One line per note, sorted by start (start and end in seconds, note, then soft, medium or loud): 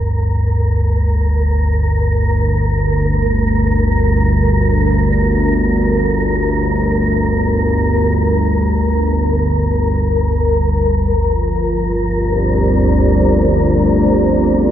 0.00 11.17 G1 medium
0.00 11.17 D2 medium
0.00 11.15 A#4 medium
11.16 14.71 G1 medium
11.16 14.71 D2 medium
11.16 14.71 F4 medium
11.16 14.71 A#4 medium
12.05 14.71 G4 medium
12.24 14.71 C5 medium
12.24 14.71 D5 medium